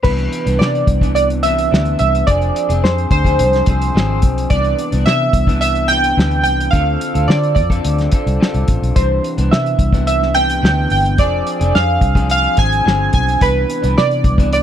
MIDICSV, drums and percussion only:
0, 0, Header, 1, 2, 480
1, 0, Start_track
1, 0, Key_signature, 0, "major"
1, 0, Tempo, 557103
1, 39, Time_signature, 4, 2, 24, 8
1, 12603, End_track
2, 0, Start_track
2, 0, Title_t, "Drums"
2, 37, Note_on_c, 9, 36, 96
2, 37, Note_on_c, 9, 49, 84
2, 123, Note_off_c, 9, 49, 0
2, 124, Note_off_c, 9, 36, 0
2, 158, Note_on_c, 9, 42, 31
2, 244, Note_off_c, 9, 42, 0
2, 281, Note_on_c, 9, 42, 67
2, 367, Note_off_c, 9, 42, 0
2, 403, Note_on_c, 9, 42, 52
2, 489, Note_off_c, 9, 42, 0
2, 530, Note_on_c, 9, 38, 105
2, 616, Note_off_c, 9, 38, 0
2, 647, Note_on_c, 9, 42, 33
2, 733, Note_off_c, 9, 42, 0
2, 753, Note_on_c, 9, 36, 91
2, 755, Note_on_c, 9, 42, 69
2, 839, Note_off_c, 9, 36, 0
2, 842, Note_off_c, 9, 42, 0
2, 873, Note_on_c, 9, 36, 86
2, 887, Note_on_c, 9, 42, 44
2, 959, Note_off_c, 9, 36, 0
2, 973, Note_off_c, 9, 42, 0
2, 998, Note_on_c, 9, 42, 89
2, 1085, Note_off_c, 9, 42, 0
2, 1122, Note_on_c, 9, 42, 34
2, 1208, Note_off_c, 9, 42, 0
2, 1233, Note_on_c, 9, 42, 83
2, 1319, Note_off_c, 9, 42, 0
2, 1366, Note_on_c, 9, 42, 54
2, 1452, Note_off_c, 9, 42, 0
2, 1498, Note_on_c, 9, 38, 103
2, 1584, Note_off_c, 9, 38, 0
2, 1597, Note_on_c, 9, 42, 33
2, 1684, Note_off_c, 9, 42, 0
2, 1713, Note_on_c, 9, 42, 69
2, 1800, Note_off_c, 9, 42, 0
2, 1852, Note_on_c, 9, 42, 46
2, 1938, Note_off_c, 9, 42, 0
2, 1960, Note_on_c, 9, 42, 89
2, 1962, Note_on_c, 9, 36, 95
2, 2046, Note_off_c, 9, 42, 0
2, 2048, Note_off_c, 9, 36, 0
2, 2082, Note_on_c, 9, 42, 34
2, 2168, Note_off_c, 9, 42, 0
2, 2206, Note_on_c, 9, 42, 70
2, 2292, Note_off_c, 9, 42, 0
2, 2326, Note_on_c, 9, 42, 55
2, 2413, Note_off_c, 9, 42, 0
2, 2454, Note_on_c, 9, 38, 104
2, 2540, Note_off_c, 9, 38, 0
2, 2570, Note_on_c, 9, 42, 30
2, 2657, Note_off_c, 9, 42, 0
2, 2677, Note_on_c, 9, 36, 88
2, 2677, Note_on_c, 9, 42, 69
2, 2763, Note_off_c, 9, 36, 0
2, 2764, Note_off_c, 9, 42, 0
2, 2797, Note_on_c, 9, 36, 81
2, 2810, Note_on_c, 9, 42, 46
2, 2883, Note_off_c, 9, 36, 0
2, 2896, Note_off_c, 9, 42, 0
2, 2922, Note_on_c, 9, 42, 93
2, 3008, Note_off_c, 9, 42, 0
2, 3042, Note_on_c, 9, 42, 31
2, 3056, Note_on_c, 9, 38, 31
2, 3128, Note_off_c, 9, 42, 0
2, 3142, Note_off_c, 9, 38, 0
2, 3156, Note_on_c, 9, 42, 76
2, 3165, Note_on_c, 9, 36, 94
2, 3242, Note_off_c, 9, 42, 0
2, 3251, Note_off_c, 9, 36, 0
2, 3288, Note_on_c, 9, 42, 54
2, 3374, Note_off_c, 9, 42, 0
2, 3421, Note_on_c, 9, 38, 106
2, 3507, Note_off_c, 9, 38, 0
2, 3637, Note_on_c, 9, 42, 65
2, 3644, Note_on_c, 9, 36, 94
2, 3723, Note_off_c, 9, 42, 0
2, 3731, Note_off_c, 9, 36, 0
2, 3773, Note_on_c, 9, 42, 50
2, 3859, Note_off_c, 9, 42, 0
2, 3879, Note_on_c, 9, 42, 95
2, 3882, Note_on_c, 9, 36, 101
2, 3965, Note_off_c, 9, 42, 0
2, 3968, Note_off_c, 9, 36, 0
2, 4001, Note_on_c, 9, 42, 34
2, 4087, Note_off_c, 9, 42, 0
2, 4123, Note_on_c, 9, 42, 66
2, 4209, Note_off_c, 9, 42, 0
2, 4242, Note_on_c, 9, 42, 53
2, 4328, Note_off_c, 9, 42, 0
2, 4370, Note_on_c, 9, 38, 102
2, 4456, Note_off_c, 9, 38, 0
2, 4594, Note_on_c, 9, 36, 93
2, 4595, Note_on_c, 9, 42, 69
2, 4680, Note_off_c, 9, 36, 0
2, 4681, Note_off_c, 9, 42, 0
2, 4714, Note_on_c, 9, 36, 86
2, 4729, Note_on_c, 9, 42, 46
2, 4800, Note_off_c, 9, 36, 0
2, 4815, Note_off_c, 9, 42, 0
2, 4840, Note_on_c, 9, 42, 97
2, 4926, Note_off_c, 9, 42, 0
2, 4956, Note_on_c, 9, 42, 33
2, 5043, Note_off_c, 9, 42, 0
2, 5071, Note_on_c, 9, 42, 80
2, 5157, Note_off_c, 9, 42, 0
2, 5203, Note_on_c, 9, 42, 51
2, 5290, Note_off_c, 9, 42, 0
2, 5337, Note_on_c, 9, 38, 113
2, 5423, Note_off_c, 9, 38, 0
2, 5438, Note_on_c, 9, 42, 33
2, 5524, Note_off_c, 9, 42, 0
2, 5555, Note_on_c, 9, 42, 63
2, 5641, Note_off_c, 9, 42, 0
2, 5691, Note_on_c, 9, 42, 50
2, 5777, Note_off_c, 9, 42, 0
2, 5800, Note_on_c, 9, 36, 91
2, 5800, Note_on_c, 9, 42, 83
2, 5886, Note_off_c, 9, 36, 0
2, 5886, Note_off_c, 9, 42, 0
2, 6041, Note_on_c, 9, 42, 69
2, 6127, Note_off_c, 9, 42, 0
2, 6163, Note_on_c, 9, 42, 47
2, 6249, Note_off_c, 9, 42, 0
2, 6291, Note_on_c, 9, 38, 114
2, 6377, Note_off_c, 9, 38, 0
2, 6406, Note_on_c, 9, 42, 33
2, 6492, Note_off_c, 9, 42, 0
2, 6514, Note_on_c, 9, 36, 92
2, 6516, Note_on_c, 9, 42, 72
2, 6600, Note_off_c, 9, 36, 0
2, 6602, Note_off_c, 9, 42, 0
2, 6634, Note_on_c, 9, 36, 81
2, 6648, Note_on_c, 9, 42, 46
2, 6720, Note_off_c, 9, 36, 0
2, 6734, Note_off_c, 9, 42, 0
2, 6760, Note_on_c, 9, 42, 91
2, 6846, Note_off_c, 9, 42, 0
2, 6880, Note_on_c, 9, 42, 33
2, 6893, Note_on_c, 9, 38, 35
2, 6966, Note_off_c, 9, 42, 0
2, 6979, Note_off_c, 9, 38, 0
2, 6993, Note_on_c, 9, 42, 82
2, 7002, Note_on_c, 9, 36, 96
2, 7079, Note_off_c, 9, 42, 0
2, 7088, Note_off_c, 9, 36, 0
2, 7126, Note_on_c, 9, 42, 50
2, 7212, Note_off_c, 9, 42, 0
2, 7259, Note_on_c, 9, 38, 110
2, 7345, Note_off_c, 9, 38, 0
2, 7361, Note_on_c, 9, 42, 33
2, 7447, Note_off_c, 9, 42, 0
2, 7476, Note_on_c, 9, 42, 68
2, 7482, Note_on_c, 9, 36, 91
2, 7562, Note_off_c, 9, 42, 0
2, 7569, Note_off_c, 9, 36, 0
2, 7612, Note_on_c, 9, 42, 49
2, 7698, Note_off_c, 9, 42, 0
2, 7720, Note_on_c, 9, 42, 90
2, 7722, Note_on_c, 9, 36, 98
2, 7807, Note_off_c, 9, 42, 0
2, 7808, Note_off_c, 9, 36, 0
2, 7964, Note_on_c, 9, 42, 72
2, 8050, Note_off_c, 9, 42, 0
2, 8082, Note_on_c, 9, 42, 55
2, 8168, Note_off_c, 9, 42, 0
2, 8208, Note_on_c, 9, 38, 113
2, 8294, Note_off_c, 9, 38, 0
2, 8325, Note_on_c, 9, 42, 35
2, 8411, Note_off_c, 9, 42, 0
2, 8433, Note_on_c, 9, 36, 90
2, 8434, Note_on_c, 9, 42, 69
2, 8519, Note_off_c, 9, 36, 0
2, 8520, Note_off_c, 9, 42, 0
2, 8552, Note_on_c, 9, 36, 88
2, 8565, Note_on_c, 9, 42, 50
2, 8638, Note_off_c, 9, 36, 0
2, 8652, Note_off_c, 9, 42, 0
2, 8678, Note_on_c, 9, 42, 94
2, 8764, Note_off_c, 9, 42, 0
2, 8811, Note_on_c, 9, 38, 35
2, 8897, Note_off_c, 9, 38, 0
2, 8912, Note_on_c, 9, 42, 79
2, 8998, Note_off_c, 9, 42, 0
2, 9045, Note_on_c, 9, 42, 52
2, 9131, Note_off_c, 9, 42, 0
2, 9176, Note_on_c, 9, 38, 114
2, 9262, Note_off_c, 9, 38, 0
2, 9393, Note_on_c, 9, 46, 49
2, 9479, Note_off_c, 9, 46, 0
2, 9529, Note_on_c, 9, 42, 48
2, 9615, Note_off_c, 9, 42, 0
2, 9635, Note_on_c, 9, 42, 86
2, 9638, Note_on_c, 9, 36, 100
2, 9722, Note_off_c, 9, 42, 0
2, 9724, Note_off_c, 9, 36, 0
2, 9880, Note_on_c, 9, 42, 72
2, 9966, Note_off_c, 9, 42, 0
2, 10002, Note_on_c, 9, 42, 52
2, 10088, Note_off_c, 9, 42, 0
2, 10128, Note_on_c, 9, 38, 100
2, 10215, Note_off_c, 9, 38, 0
2, 10350, Note_on_c, 9, 36, 92
2, 10352, Note_on_c, 9, 42, 68
2, 10437, Note_off_c, 9, 36, 0
2, 10439, Note_off_c, 9, 42, 0
2, 10470, Note_on_c, 9, 36, 92
2, 10483, Note_on_c, 9, 42, 45
2, 10557, Note_off_c, 9, 36, 0
2, 10569, Note_off_c, 9, 42, 0
2, 10594, Note_on_c, 9, 42, 88
2, 10681, Note_off_c, 9, 42, 0
2, 10717, Note_on_c, 9, 42, 31
2, 10803, Note_off_c, 9, 42, 0
2, 10830, Note_on_c, 9, 42, 78
2, 10839, Note_on_c, 9, 36, 98
2, 10916, Note_off_c, 9, 42, 0
2, 10925, Note_off_c, 9, 36, 0
2, 10961, Note_on_c, 9, 42, 54
2, 11047, Note_off_c, 9, 42, 0
2, 11096, Note_on_c, 9, 38, 100
2, 11182, Note_off_c, 9, 38, 0
2, 11311, Note_on_c, 9, 42, 68
2, 11319, Note_on_c, 9, 36, 94
2, 11398, Note_off_c, 9, 42, 0
2, 11405, Note_off_c, 9, 36, 0
2, 11446, Note_on_c, 9, 42, 47
2, 11532, Note_off_c, 9, 42, 0
2, 11556, Note_on_c, 9, 42, 93
2, 11558, Note_on_c, 9, 36, 94
2, 11642, Note_off_c, 9, 42, 0
2, 11644, Note_off_c, 9, 36, 0
2, 11801, Note_on_c, 9, 42, 68
2, 11887, Note_off_c, 9, 42, 0
2, 11921, Note_on_c, 9, 42, 51
2, 12007, Note_off_c, 9, 42, 0
2, 12046, Note_on_c, 9, 38, 106
2, 12132, Note_off_c, 9, 38, 0
2, 12160, Note_on_c, 9, 42, 35
2, 12247, Note_off_c, 9, 42, 0
2, 12271, Note_on_c, 9, 36, 91
2, 12271, Note_on_c, 9, 42, 70
2, 12357, Note_off_c, 9, 36, 0
2, 12357, Note_off_c, 9, 42, 0
2, 12390, Note_on_c, 9, 36, 91
2, 12404, Note_on_c, 9, 42, 51
2, 12477, Note_off_c, 9, 36, 0
2, 12490, Note_off_c, 9, 42, 0
2, 12516, Note_on_c, 9, 42, 94
2, 12602, Note_off_c, 9, 42, 0
2, 12603, End_track
0, 0, End_of_file